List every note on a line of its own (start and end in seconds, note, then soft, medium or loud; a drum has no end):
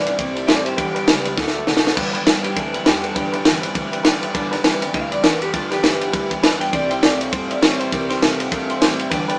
0.00 0.12 B1 medium
0.00 0.16 G2 medium
0.00 0.16 E3 loud
0.00 0.17 D5 loud
0.05 0.16 E3 soft
0.05 0.18 G3 medium
0.05 0.18 B3 soft
0.05 0.18 G4 medium
0.05 0.13 B4 medium
0.05 0.13 D5 medium
0.05 0.14 F#5 medium
0.05 ride medium
0.17 0.42 C2 medium
0.17 0.47 C3 medium
0.17 0.35 E3 medium
0.17 0.47 G3 loud
0.17 0.36 A3 medium
0.17 0.36 E4 medium
0.17 0.34 G4 medium
0.17 0.28 C5 medium
0.17 0.28 E5 medium
0.17 0.29 G5 medium
0.17 kick loud
0.17 ride medium
0.34 0.48 E4 medium
0.34 0.48 G4 medium
0.34 0.42 C5 medium
0.34 0.43 E5 medium
0.34 0.43 A5 medium
0.34 ride medium
0.39 0.47 A3 medium
0.47 0.71 A2 medium
0.47 0.65 C3 medium
0.47 0.66 E3 medium
0.47 0.76 G3 medium
0.47 0.66 A3 medium
0.47 0.66 E4 medium
0.47 0.64 G4 medium
0.47 0.64 A4 medium
0.47 0.58 C5 loud
0.47 0.65 D5 medium
0.47 0.58 E5 loud
0.47 0.59 G5 loud
0.47 snare loud
0.47 ride medium
0.65 0.79 E4 medium
0.65 0.76 G4 medium
0.65 0.78 G4 medium
0.65 0.72 C5 medium
0.65 0.77 C5 medium
0.65 0.73 E5 medium
0.65 0.73 A5 medium
0.65 ride medium
0.69 0.78 A3 soft
0.76 1.01 G1 medium
0.76 0.95 G2 medium
0.76 0.96 D3 medium
0.76 0.96 E3 medium
0.76 0.96 G3 medium
0.76 0.95 B3 loud
0.76 1.35 G4 loud
0.76 0.94 G4 medium
0.76 0.88 B4 medium
0.76 0.88 D5 medium
0.76 0.89 G5 loud
0.76 kick loud
0.76 ride medium
0.94 1.08 E3 soft
0.94 1.08 G3 medium
0.94 1.08 B3 medium
0.94 1.07 G4 medium
0.94 1.02 B4 loud
0.94 1.03 D5 loud
0.94 1.03 G5 loud
0.94 ride medium
1.07 1.31 C#2 medium
1.07 1.25 G2 medium
1.07 1.26 D3 medium
1.07 1.26 E3 medium
1.07 1.26 G3 medium
1.07 1.25 B3 medium
1.07 1.24 G4 medium
1.07 1.18 B4 medium
1.07 1.18 D5 medium
1.07 1.18 G5 medium
1.07 snare loud
1.07 ride medium
1.24 1.38 G3 medium
1.24 1.38 B3 medium
1.24 1.37 G4 medium
1.24 1.32 B4 medium
1.24 1.32 D5 medium
1.24 1.33 G5 medium
1.24 ride medium
1.36 1.60 D2 medium
1.36 1.66 D3 medium
1.36 1.55 F#3 medium
1.36 1.56 A3 medium
1.36 1.56 B3 medium
1.36 1.47 A4 medium
1.36 1.48 D5 medium
1.36 1.48 F#5 medium
1.36 kick loud
1.36 snare medium
1.41 1.54 F#4 medium
1.47 snare medium
1.54 1.68 B3 medium
1.54 1.67 F#4 medium
1.54 1.62 A4 medium
1.54 1.62 D5 medium
1.54 1.62 A5 medium
1.58 1.67 A3 soft
1.65 1.91 C3 medium
1.65 1.85 D3 medium
1.65 1.85 F#3 loud
1.65 1.85 A3 medium
1.65 1.85 B3 loud
1.65 1.77 A4 loud
1.65 1.77 D5 loud
1.65 1.78 F#5 loud
1.65 snare medium
1.70 1.84 F#4 loud
1.77 snare loud
1.83 1.97 B3 medium
1.83 1.97 F#4 medium
1.83 1.91 A4 medium
1.83 1.92 D5 medium
1.83 1.92 F#5 loud
1.83 snare loud
1.88 1.98 A3 medium
1.95 2.20 G1 medium
1.95 2.15 G2 medium
1.95 2.15 D3 medium
1.95 2.15 E3 loud
1.95 2.15 G3 loud
1.95 2.15 B3 loud
1.95 2.14 G4 loud
1.95 2.07 B4 loud
1.95 2.07 D5 loud
1.95 2.08 G5 loud
1.95 kick loud
1.95 crash loud
2.13 2.27 G3 medium
2.13 2.27 B3 medium
2.13 2.27 G4 medium
2.13 2.21 B4 loud
2.13 2.21 D5 loud
2.13 2.22 G5 loud
2.13 ride medium
2.18 2.27 E3 soft
2.25 2.50 G1 medium
2.25 2.44 G2 medium
2.25 2.44 D3 medium
2.25 2.45 E3 medium
2.25 2.45 G3 medium
2.25 2.45 B3 medium
2.25 2.36 B4 medium
2.25 2.44 B4 medium
2.25 2.37 D5 medium
2.25 2.37 G5 medium
2.25 snare loud
2.25 ride medium
2.29 2.43 G4 medium
2.43 2.56 G3 soft
2.43 2.57 B3 soft
2.43 2.56 G4 medium
2.43 2.51 B4 medium
2.43 2.51 D5 medium
2.43 2.52 G5 medium
2.43 ride medium
2.48 2.55 E3 soft
2.55 2.79 D2 medium
2.55 2.85 G2 medium
2.55 2.74 E3 medium
2.55 2.74 G3 medium
2.55 2.73 B3 medium
2.55 2.74 A4 medium
2.55 2.66 B4 medium
2.55 2.67 D5 medium
2.55 2.67 G5 medium
2.55 kick loud
2.55 ride medium
2.59 2.72 G4 medium
2.73 2.85 E3 soft
2.73 2.86 G3 medium
2.73 2.86 B3 medium
2.73 2.86 G4 medium
2.73 2.81 B4 medium
2.73 2.86 B4 medium
2.73 2.81 D5 medium
2.73 2.82 G5 medium
2.73 ride medium
2.85 3.09 E2 medium
2.85 3.04 G2 medium
2.85 3.04 D3 medium
2.85 3.04 E3 medium
2.85 3.04 G3 medium
2.85 3.03 B3 medium
2.85 3.04 G4 medium
2.85 3.01 G4 medium
2.85 2.96 B4 loud
2.85 2.97 D5 loud
2.85 2.97 G5 loud
2.85 snare loud
2.85 ride medium
3.03 3.15 E3 soft
3.03 3.15 G3 medium
3.03 3.16 B3 medium
3.03 3.15 G4 medium
3.03 3.16 A4 medium
3.03 3.11 B4 medium
3.03 3.11 D5 medium
3.03 3.11 F#5 medium
3.03 ride medium
3.15 3.39 G1 medium
3.15 3.33 G2 medium
3.15 3.34 D3 medium
3.15 3.34 E3 medium
3.15 3.33 G3 medium
3.15 3.32 B3 medium
3.15 4.03 G4 loud
3.15 3.31 G4 medium
3.15 3.26 B4 loud
3.15 3.26 D5 medium
3.15 3.27 G5 loud
3.15 kick loud
3.15 ride medium
3.32 3.45 E3 soft
3.32 3.45 G3 medium
3.32 3.46 B3 soft
3.32 3.45 G4 medium
3.32 3.40 B4 loud
3.32 3.41 D5 loud
3.32 3.41 G5 loud
3.32 ride medium
3.44 3.69 G1 medium
3.44 3.63 G2 medium
3.44 3.63 D3 medium
3.44 3.63 E3 medium
3.44 3.64 G3 medium
3.44 3.62 B3 medium
3.44 3.61 G4 medium
3.44 3.56 B4 medium
3.44 3.56 D5 medium
3.44 3.56 E5 medium
3.44 snare loud
3.44 ride medium
3.62 3.74 E3 medium
3.62 3.75 G3 soft
3.62 3.76 B3 medium
3.62 3.75 G4 medium
3.62 3.70 B4 medium
3.62 3.70 D5 medium
3.62 3.71 G5 loud
3.62 ride medium
3.74 3.98 D2 medium
3.74 4.03 G2 medium
3.74 3.93 E3 medium
3.74 3.93 G3 medium
3.74 3.92 B3 medium
3.74 3.91 G4 medium
3.74 3.85 B4 medium
3.74 3.86 D5 medium
3.74 3.86 G5 medium
3.74 kick loud
3.74 ride medium
3.92 4.04 E3 medium
3.92 4.05 G3 medium
3.92 4.05 B3 medium
3.92 4.05 G4 medium
3.92 4.00 B4 loud
3.92 4.00 D5 medium
3.92 4.01 G5 loud
3.92 ride medium
4.03 4.28 E2 medium
4.03 4.22 G2 loud
4.03 4.23 D3 loud
4.03 4.23 E3 loud
4.03 4.23 G3 loud
4.03 4.22 B3 loud
4.03 4.21 G4 loud
4.03 4.15 B4 loud
4.03 4.15 D5 loud
4.03 4.16 G5 loud
4.03 snare loud
4.03 ride medium
4.21 4.34 E3 soft
4.21 4.35 G3 medium
4.21 4.35 B3 medium
4.21 4.35 G4 medium
4.21 4.29 B4 medium
4.21 4.30 D5 medium
4.21 4.30 E5 loud
4.21 ride medium
4.34 4.58 G1 medium
4.34 4.52 G2 loud
4.34 4.53 D3 loud
4.34 4.53 E3 medium
4.34 4.53 G3 loud
4.34 4.52 B3 loud
4.34 4.50 G4 loud
4.34 4.45 B4 loud
4.34 4.45 D5 loud
4.34 4.46 A5 loud
4.34 kick loud
4.34 ride medium
4.51 4.64 E3 soft
4.51 4.64 G3 medium
4.51 4.65 B3 medium
4.51 4.64 G4 medium
4.51 4.59 B4 loud
4.51 4.60 D5 loud
4.51 4.60 A5 loud
4.51 snare soft
4.51 ride medium
4.64 4.88 G1 loud
4.64 4.82 G2 loud
4.64 4.82 D3 loud
4.64 4.83 E3 medium
4.64 4.82 G3 medium
4.64 4.81 B3 loud
4.64 4.80 G4 loud
4.64 4.75 B4 medium
4.64 4.75 D5 medium
4.64 4.76 G5 loud
4.64 snare loud
4.64 ride medium
4.81 4.92 E3 medium
4.81 4.93 G3 medium
4.81 4.95 B3 medium
4.81 4.94 G4 medium
4.81 4.89 B4 medium
4.81 4.90 D5 medium
4.81 4.90 G5 loud
4.81 ride medium
4.93 5.17 D2 loud
4.93 5.23 G2 medium
4.93 5.12 E3 medium
4.93 5.12 G3 medium
4.93 5.11 B3 medium
4.93 5.10 G4 medium
4.93 5.04 B4 medium
4.93 5.05 D5 medium
4.93 5.11 F5 medium
4.93 5.05 G5 medium
4.93 kick loud
4.93 ride medium
5.11 5.23 E3 soft
5.11 5.23 G3 soft
5.11 5.24 B3 soft
5.11 5.24 G4 medium
5.11 5.19 B4 medium
5.11 5.24 D5 medium
5.11 5.19 D5 medium
5.11 5.20 G5 medium
5.11 ride medium
5.23 5.47 E2 loud
5.23 5.41 G2 medium
5.23 5.42 D3 medium
5.23 5.42 E3 medium
5.23 5.42 G3 medium
5.23 5.40 B3 medium
5.23 5.39 G4 medium
5.23 5.41 A#4 medium
5.23 5.34 B4 loud
5.23 5.35 D5 medium
5.23 5.35 G5 loud
5.23 snare loud
5.23 ride medium
5.40 5.52 E3 soft
5.40 5.53 G3 medium
5.40 5.53 B3 medium
5.40 5.53 G4 medium
5.40 5.54 G4 loud
5.40 5.49 B4 medium
5.40 5.49 D5 medium
5.40 5.50 G5 medium
5.40 ride medium
5.53 5.77 G1 medium
5.53 5.71 G2 medium
5.53 5.71 D3 medium
5.53 5.72 E3 medium
5.53 5.72 G3 medium
5.53 5.71 B3 medium
5.53 5.71 F4 medium
5.53 5.69 G4 medium
5.53 5.64 B4 medium
5.53 5.65 D5 medium
5.53 5.65 A5 loud
5.53 kick loud
5.53 ride medium
5.70 5.83 E3 soft
5.70 5.83 G3 soft
5.70 5.84 B3 medium
5.70 5.83 G4 medium
5.70 6.29 G4 loud
5.70 5.79 B4 loud
5.70 5.79 D5 medium
5.70 5.80 G5 loud
5.70 snare soft
5.70 ride medium
5.83 6.07 G1 medium
5.83 6.01 G2 medium
5.83 6.01 D3 medium
5.83 6.02 E3 medium
5.83 6.01 G3 medium
5.83 6.00 B3 medium
5.83 5.99 G4 medium
5.83 5.94 B4 medium
5.83 5.94 D5 medium
5.83 5.95 G5 medium
5.83 snare loud
5.83 ride medium
6.00 6.11 E3 soft
6.00 6.12 G3 soft
6.00 6.13 B3 medium
6.00 6.13 G4 medium
6.00 6.08 B4 medium
6.00 6.09 D5 medium
6.00 6.09 F#5 medium
6.00 ride medium
6.12 6.37 D2 medium
6.12 6.41 G2 medium
6.12 6.30 E3 medium
6.12 6.31 G3 medium
6.12 6.30 B3 medium
6.12 6.29 G4 medium
6.12 6.24 B4 medium
6.12 6.24 D5 medium
6.12 6.24 E5 loud
6.12 kick loud
6.12 ride medium
6.30 6.43 E3 medium
6.30 6.43 G3 medium
6.30 6.43 B3 medium
6.30 6.43 G4 medium
6.30 6.38 B4 medium
6.30 6.38 D5 medium
6.30 6.39 G5 loud
6.30 kick medium
6.30 ride medium
6.43 6.66 E2 loud
6.43 6.61 G2 medium
6.43 6.61 D3 medium
6.43 6.61 E3 loud
6.43 6.61 G3 medium
6.43 6.60 B3 medium
6.43 6.59 G4 medium
6.43 6.54 B4 loud
6.43 6.54 D5 loud
6.43 6.54 E5 loud
6.43 snare loud
6.43 ride medium
6.60 6.72 E3 soft
6.60 6.74 G3 medium
6.60 6.73 B3 medium
6.60 6.73 G4 medium
6.60 6.68 B4 medium
6.60 6.68 D5 medium
6.60 6.72 G5 medium
6.60 6.69 G5 medium
6.60 ride medium
6.72 6.96 C2 medium
6.72 6.91 C3 medium
6.72 6.91 E3 medium
6.72 7.03 G3 loud
6.72 6.91 A3 medium
6.72 6.91 E4 medium
6.72 6.89 G4 medium
6.72 6.83 C5 medium
6.72 6.90 D5 loud
6.72 6.83 E5 medium
6.72 6.84 G5 loud
6.72 kick loud
6.72 ride medium
6.90 7.03 E4 soft
6.90 7.03 G4 soft
6.90 6.98 C5 loud
6.90 6.98 E5 medium
6.90 7.02 G5 medium
6.90 6.98 G5 loud
6.90 ride medium
6.94 7.03 A3 soft
7.01 7.26 C2 medium
7.01 7.21 C3 medium
7.01 7.21 E3 medium
7.01 7.21 A3 medium
7.01 7.21 E4 medium
7.01 7.19 G4 medium
7.01 7.13 C5 medium
7.01 7.20 D5 medium
7.01 7.13 E5 medium
7.01 7.14 G5 medium
7.01 snare loud
7.01 ride medium
7.19 7.32 A3 soft
7.19 7.33 E4 soft
7.19 7.32 G4 medium
7.19 7.27 C5 medium
7.19 7.32 C#5 loud
7.19 7.28 E5 medium
7.19 7.28 G5 medium
7.19 ride medium
7.32 7.56 G2 medium
7.32 7.62 C3 medium
7.32 7.50 E3 medium
7.32 7.51 A3 medium
7.32 7.51 E4 medium
7.32 7.49 G4 medium
7.32 7.43 C5 medium
7.32 7.50 C5 loud
7.32 7.43 E5 medium
7.32 7.44 G5 medium
7.32 kick loud
7.32 ride medium
7.49 7.63 E4 medium
7.49 7.62 G4 medium
7.49 7.57 C5 medium
7.49 7.62 D5 medium
7.49 7.57 E5 medium
7.49 7.58 G5 medium
7.49 ride medium
7.53 7.62 A3 soft
7.62 7.85 A2 medium
7.62 7.80 C3 medium
7.62 7.80 E3 medium
7.62 7.91 G3 loud
7.62 7.81 A3 medium
7.62 7.80 E4 medium
7.62 7.79 G4 medium
7.62 7.73 C5 loud
7.62 7.79 C#5 medium
7.62 7.73 E5 loud
7.62 7.73 G5 loud
7.62 snare loud
7.62 ride medium
7.79 7.92 A3 medium
7.79 7.92 E4 medium
7.79 7.92 G4 medium
7.79 7.87 C5 medium
7.79 7.92 C5 medium
7.79 7.87 E5 medium
7.79 7.88 A5 medium
7.79 ride medium
7.91 8.15 C2 medium
7.91 8.10 C3 medium
7.91 8.10 E3 medium
7.91 8.23 G3 loud
7.91 8.10 A3 medium
7.91 8.10 E4 loud
7.91 8.08 G4 medium
7.91 8.09 A#4 medium
7.91 8.02 C5 medium
7.91 8.03 E5 medium
7.91 8.03 G5 loud
7.91 kick loud
7.91 ride medium
8.09 8.21 A3 soft
8.09 8.22 E4 medium
8.09 8.22 G4 medium
8.09 8.17 C5 loud
8.09 8.22 C5 medium
8.09 8.17 E5 loud
8.09 8.17 G5 loud
8.09 snare soft
8.09 ride medium
8.21 8.45 C2 medium
8.21 8.39 C3 medium
8.21 8.40 E3 medium
8.21 8.40 A3 medium
8.21 8.40 E4 loud
8.21 8.38 G4 medium
8.21 8.39 A#4 loud
8.21 8.33 E5 medium
8.21 8.33 A5 medium
8.21 snare loud
8.21 ride medium
8.39 8.51 A3 soft
8.39 8.52 E4 soft
8.39 8.52 G4 medium
8.39 8.47 C5 medium
8.39 8.47 E5 medium
8.39 8.47 F#5 medium
8.39 ride medium
8.50 8.75 G2 medium
8.50 8.80 C3 medium
8.50 8.69 E3 medium
8.50 8.70 A3 medium
8.50 8.70 E4 medium
8.50 8.69 A#4 medium
8.50 8.62 C5 medium
8.50 8.62 E5 medium
8.50 8.63 A5 medium
8.50 kick loud
8.50 ride medium
8.55 8.68 G4 medium
8.68 8.81 A3 soft
8.68 8.82 E4 medium
8.68 8.81 G4 medium
8.68 8.76 C5 medium
8.68 8.99 C5 loud
8.68 8.77 E5 medium
8.68 8.77 G5 medium
8.68 ride medium
8.80 9.05 A2 medium
8.80 8.99 C3 medium
8.80 8.99 E3 medium
8.80 9.09 G3 medium
8.80 9.00 A3 medium
8.80 8.99 E4 medium
8.80 8.98 G4 medium
8.80 8.92 C5 loud
8.80 8.92 E5 medium
8.80 8.92 G5 loud
8.80 snare loud
8.80 ride medium
8.98 9.12 A3 soft
8.98 9.12 E4 medium
8.98 9.11 G4 medium
8.98 9.06 C5 medium
8.98 9.06 E5 medium
8.98 9.07 G5 medium
8.98 ride medium
9.10 9.34 G1 medium
9.10 9.29 G2 medium
9.10 9.29 D3 medium
9.10 9.29 E3 medium
9.10 9.29 G3 medium
9.10 9.29 B3 loud
9.10 9.27 G4 loud
9.10 9.21 B4 loud
9.10 9.22 D5 loud
9.10 9.22 G5 loud
9.10 kick loud
9.10 ride medium
9.28 9.39 E3 soft
9.28 9.39 G3 soft
9.28 9.39 B3 medium
9.28 9.39 G4 medium
9.28 9.36 B4 loud
9.28 9.36 D5 loud
9.28 9.37 G5 loud
9.28 ride medium